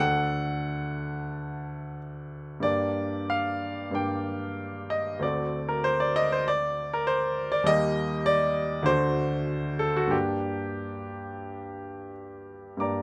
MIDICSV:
0, 0, Header, 1, 2, 480
1, 0, Start_track
1, 0, Key_signature, -2, "minor"
1, 0, Tempo, 661521
1, 1919, Time_signature, 4, 2, 24, 8
1, 2875, Tempo, 624350
1, 4795, Tempo, 604839
1, 7195, Tempo, 662252
1, 9759, End_track
2, 0, Start_track
2, 0, Title_t, "Grand piano"
2, 0, Program_c, 0, 0
2, 0, Control_c, 0, 64, 127
2, 0, Note_on_c, 0, 38, 64
2, 0, Note_on_c, 0, 57, 52
2, 0, Note_on_c, 0, 62, 51
2, 0, Note_on_c, 0, 69, 55
2, 0, Note_on_c, 0, 78, 104
2, 8, Control_c, 0, 64, 0
2, 142, Control_c, 0, 64, 127
2, 1432, Note_off_c, 0, 78, 0
2, 1874, Note_off_c, 0, 38, 0
2, 1879, Note_off_c, 0, 57, 0
2, 1881, Note_off_c, 0, 62, 0
2, 1886, Note_off_c, 0, 69, 0
2, 1886, Note_on_c, 0, 43, 54
2, 1892, Note_on_c, 0, 58, 46
2, 1901, Note_on_c, 0, 62, 46
2, 1906, Note_on_c, 0, 74, 99
2, 1910, Note_on_c, 0, 67, 47
2, 1934, Control_c, 0, 64, 0
2, 2071, Control_c, 0, 64, 127
2, 2392, Note_on_c, 0, 77, 95
2, 2394, Note_off_c, 0, 74, 0
2, 2826, Note_off_c, 0, 43, 0
2, 2833, Note_off_c, 0, 58, 0
2, 2837, Note_on_c, 0, 43, 56
2, 2838, Note_off_c, 0, 62, 0
2, 2843, Note_off_c, 0, 67, 0
2, 2847, Note_on_c, 0, 58, 44
2, 2855, Note_on_c, 0, 62, 42
2, 2861, Note_on_c, 0, 67, 47
2, 2865, Note_on_c, 0, 79, 83
2, 2872, Note_off_c, 0, 77, 0
2, 3597, Note_on_c, 0, 75, 87
2, 3599, Note_off_c, 0, 79, 0
2, 3794, Note_off_c, 0, 43, 0
2, 3799, Note_off_c, 0, 58, 0
2, 3804, Note_off_c, 0, 62, 0
2, 3807, Note_off_c, 0, 67, 0
2, 3820, Note_on_c, 0, 38, 54
2, 3826, Note_on_c, 0, 57, 47
2, 3836, Note_on_c, 0, 60, 46
2, 3840, Note_off_c, 0, 75, 0
2, 3844, Note_on_c, 0, 66, 45
2, 3847, Note_on_c, 0, 74, 81
2, 3858, Control_c, 0, 64, 0
2, 3990, Control_c, 0, 64, 127
2, 4200, Note_on_c, 0, 70, 88
2, 4201, Note_off_c, 0, 74, 0
2, 4319, Note_off_c, 0, 70, 0
2, 4319, Note_on_c, 0, 72, 100
2, 4438, Note_off_c, 0, 72, 0
2, 4443, Note_on_c, 0, 74, 94
2, 4560, Note_off_c, 0, 74, 0
2, 4564, Note_on_c, 0, 75, 106
2, 4680, Note_off_c, 0, 75, 0
2, 4690, Note_on_c, 0, 72, 91
2, 4803, Note_off_c, 0, 72, 0
2, 4810, Control_c, 0, 64, 0
2, 4810, Note_on_c, 0, 74, 106
2, 4930, Control_c, 0, 64, 127
2, 5170, Note_off_c, 0, 74, 0
2, 5172, Note_on_c, 0, 70, 93
2, 5279, Note_on_c, 0, 72, 101
2, 5287, Note_off_c, 0, 70, 0
2, 5634, Note_on_c, 0, 74, 102
2, 5635, Note_off_c, 0, 72, 0
2, 5711, Note_off_c, 0, 38, 0
2, 5714, Note_off_c, 0, 57, 0
2, 5719, Note_off_c, 0, 60, 0
2, 5723, Note_off_c, 0, 66, 0
2, 5727, Note_on_c, 0, 39, 68
2, 5730, Note_on_c, 0, 55, 56
2, 5744, Note_on_c, 0, 58, 53
2, 5752, Note_on_c, 0, 75, 121
2, 5753, Note_on_c, 0, 67, 58
2, 5754, Note_off_c, 0, 74, 0
2, 5766, Control_c, 0, 64, 0
2, 5896, Control_c, 0, 64, 127
2, 6223, Note_on_c, 0, 74, 116
2, 6229, Note_off_c, 0, 75, 0
2, 6662, Note_off_c, 0, 39, 0
2, 6664, Note_off_c, 0, 55, 0
2, 6671, Note_off_c, 0, 58, 0
2, 6672, Note_on_c, 0, 38, 72
2, 6675, Note_off_c, 0, 67, 0
2, 6679, Note_on_c, 0, 57, 57
2, 6687, Note_on_c, 0, 62, 59
2, 6698, Note_on_c, 0, 66, 57
2, 6698, Note_on_c, 0, 72, 113
2, 6701, Note_off_c, 0, 74, 0
2, 6720, Control_c, 0, 64, 0
2, 6837, Control_c, 0, 64, 127
2, 7418, Note_on_c, 0, 69, 93
2, 7422, Note_off_c, 0, 72, 0
2, 7533, Note_off_c, 0, 66, 0
2, 7539, Note_off_c, 0, 69, 0
2, 7544, Note_on_c, 0, 66, 82
2, 7620, Note_off_c, 0, 38, 0
2, 7621, Note_on_c, 0, 43, 53
2, 7623, Note_off_c, 0, 57, 0
2, 7626, Note_off_c, 0, 62, 0
2, 7635, Note_on_c, 0, 58, 44
2, 7639, Note_on_c, 0, 62, 47
2, 7648, Note_on_c, 0, 67, 82
2, 7663, Note_off_c, 0, 66, 0
2, 7675, Control_c, 0, 64, 0
2, 7813, Control_c, 0, 64, 127
2, 9104, Note_off_c, 0, 67, 0
2, 9549, Note_off_c, 0, 43, 0
2, 9556, Note_off_c, 0, 58, 0
2, 9558, Note_off_c, 0, 62, 0
2, 9577, Note_on_c, 0, 43, 46
2, 9583, Note_on_c, 0, 58, 38
2, 9591, Note_on_c, 0, 62, 38
2, 9598, Note_on_c, 0, 67, 38
2, 9599, Note_on_c, 0, 86, 70
2, 9606, Note_on_c, 0, 82, 58
2, 9609, Note_on_c, 0, 74, 55
2, 9611, Control_c, 0, 64, 0
2, 9747, Control_c, 0, 64, 127
2, 9759, Note_off_c, 0, 43, 0
2, 9759, Note_off_c, 0, 58, 0
2, 9759, Note_off_c, 0, 62, 0
2, 9759, Note_off_c, 0, 67, 0
2, 9759, Note_off_c, 0, 74, 0
2, 9759, Note_off_c, 0, 82, 0
2, 9759, Note_off_c, 0, 86, 0
2, 9759, End_track
0, 0, End_of_file